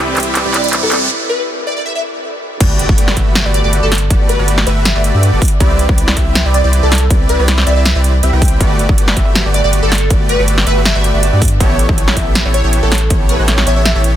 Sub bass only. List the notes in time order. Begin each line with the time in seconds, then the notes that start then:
Already playing: C2
0.17 C2
0.45 C2
0.83 C2
2.61 G1
2.89 G1
3.17 G1
3.45 G1
3.64 G1
3.83 G1
4.11 G1
4.39 G1
4.67 G1
4.95 G1
5.14 G2
5.33 G1
5.61 C2
5.89 C2
6.17 C2
6.45 C2
6.64 C2
6.83 C2
7.10 C2
7.39 C2
7.67 C2
7.95 C2
8.23 C2
8.33 C2
8.61 G1
8.89 G1
9.17 G1
9.45 G1
9.64 G1
9.83 G1
10.11 G1
10.39 G1
10.67 G1
10.95 G1
11.14 G1
11.33 G2
11.61 A1
11.89 A1
12.17 A1
12.45 A1
12.64 A1
12.83 A1
13.10 A1
13.39 A1
13.67 A1
13.95 A1